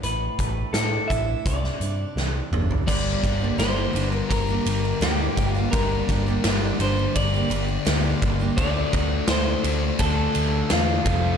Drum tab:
CC |----------------|x---------------|----------------|----------------|
RD |----------------|--x-x-x-x-x-x-x-|x-x-x-x-x-x-x-x-|x-x-x-x-x-x-x-x-|
HH |x-x-x-x-x-x-----|----------------|----------------|----------------|
SD |----o----o--o---|--o-o-------o---|--o-o-------o---|----o-------o---|
T2 |--------------o-|----------------|----------------|----------------|
FT |---------------o|----------------|----------------|----------------|
BD |--o---o-o-------|o-o-----o-----o-|o-o-----o-----o-|o-o-----o-----o-|